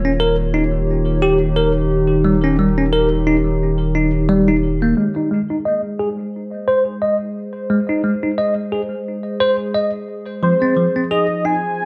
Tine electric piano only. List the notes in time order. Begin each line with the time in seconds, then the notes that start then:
0.05 C#4
0.20 A#4
0.54 D#4
1.22 G4
1.56 A#4
2.25 G3
2.44 C#4
2.59 G3
2.78 C#4
2.93 A#4
3.27 D#4
3.95 D#4
4.29 G3
4.48 D#4
4.82 A#3
4.97 G#3
5.16 D#4
5.31 G#3
5.50 D#4
5.65 D#5
5.99 G#4
6.68 C5
7.02 D#5
7.70 G#3
7.89 D#4
8.04 G#3
8.23 D#4
8.38 D#5
8.72 G#4
9.40 C5
9.74 D#5
10.43 F3
10.62 C4
10.77 F3
10.96 C4
11.11 G#4
11.45 D#4